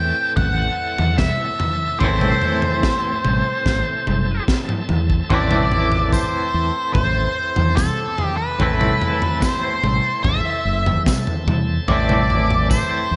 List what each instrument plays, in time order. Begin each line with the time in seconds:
Already playing: fingered electric bass E2, clean electric guitar A2 E3 A3 C4 E4, tonewheel organ C4 E4 A4 A5, lead electric guitar G5
0.36 fingered electric bass A1, lead electric guitar F#5, kick, floor tom
0.98 fingered electric bass E2, floor tom
1.18 lead electric guitar E5, kick, snare, mid tom
1.60 floor tom
2.00 fingered electric bass A1, clean electric guitar A2 E3 A3, lead electric guitar C5, kick, floor tom
2.04 clean electric guitar C4 E4
2.21 floor tom, mid tom
2.42 floor tom
2.62 floor tom
2.83 kick, snare
3.25 fingered electric bass A1, mid tom
3.66 fingered electric bass A1, kick, snare
4.07 fingered electric bass F#1, mid tom
4.48 kick, snare
4.69 mid tom
4.89 fingered electric bass E2, floor tom
5.10 kick
5.30 fingered electric bass A1, clean electric guitar A2 E3 A3 C4 E4, lead electric guitar D5, kick, floor tom
5.51 floor tom, mid tom
5.72 floor tom
5.92 floor tom
6.13 lead electric guitar C5, kick, tambourine
6.54 fingered electric bass E2
6.93 fingered electric bass A1, lead electric guitar C5, kick, floor tom
7.56 fingered electric bass E2, floor tom
7.76 lead electric guitar A4, kick, snare, mid tom, tambourine
8.18 floor tom
8.37 lead electric guitar B4
8.59 fingered electric bass A1, clean electric guitar A2 E3 A3 C4 E4, kick, floor tom
8.81 floor tom, mid tom
9.01 floor tom
9.22 floor tom
9.40 lead electric guitar C5, kick, snare, tambourine
9.83 fingered electric bass A1, mid tom
10.23 fingered electric bass A1, lead electric guitar E5, kick, floor tom
10.65 fingered electric bass F#1
10.86 floor tom
11.06 kick, snare, mid tom, tambourine
11.27 floor tom
11.47 fingered electric bass E2, floor tom, mid tom
11.88 fingered electric bass A1, clean electric guitar A2 E3 A3 C4, lead electric guitar D5, kick, floor tom
11.92 clean electric guitar E4
12.09 floor tom, mid tom
12.30 floor tom
12.51 floor tom
12.70 lead electric guitar C5, kick, tambourine
13.11 fingered electric bass E2